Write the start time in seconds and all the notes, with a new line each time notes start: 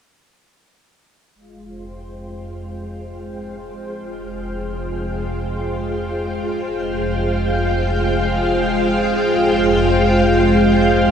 1.35 F1 G#3
1.39 F4
1.67 C5
1.78 G5
2.28 F5
4.01 F1
6.68 F1
9.35 F1